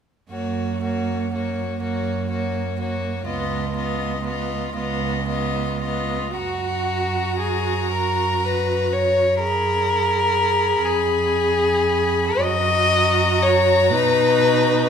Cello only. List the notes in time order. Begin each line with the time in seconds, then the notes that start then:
0.31 F#2
1.81 F#2
3.25 C#2
4.74 C#2
6.36 F#2
10.85 F2
12.41 F#2
13.90 B2